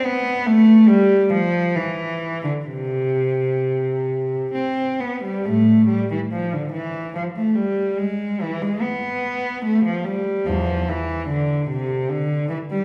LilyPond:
\new Staff \with { instrumentName = "Cello" } { \clef bass \time 3/4 \key c \major \tempo 4 = 71 b8 a8 g8 f8 e8. d16 | c2 c'8 b16 g16 | \key e \phrygian <a, a>8 g16 e16 f16 d16 e8 f16 a16 g8 | gis8 e16 gis16 b4 a16 f16 g8 |
<e, f>8 e8 d8 c8 d8 e16 g16 | }